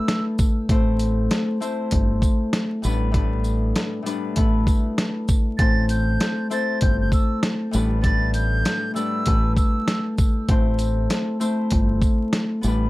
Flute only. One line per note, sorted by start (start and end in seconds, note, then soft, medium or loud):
0.00 0.25 E6 medium
5.58 5.86 A6 loud
5.90 6.48 G6 medium
6.52 6.79 A6 medium
6.82 6.99 G6 medium
7.01 7.11 G6 medium
7.13 7.40 E6 medium
8.03 8.31 A6 loud
8.34 8.92 G6 loud
8.95 9.53 E6 medium
9.57 10.04 E6 medium